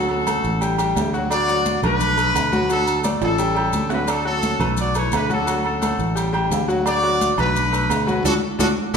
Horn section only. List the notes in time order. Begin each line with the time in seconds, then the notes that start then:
0.10 C#4 A4
1.32 F#4 D5
1.83 D4 B4
2.71 D4 A4
3.23 C#4 A4
3.91 D4 B4
4.09 D4 A4
4.26 C#4 A4
4.80 F#4 D5
4.97 E4 C#5
5.15 D4 B4
5.33 D4 A4
5.65 C#4 A4
6.87 F#4 D5
7.40 D4 B4
8.26 D4 F#4 A4
8.59 D4 F#4 A4
8.94 G4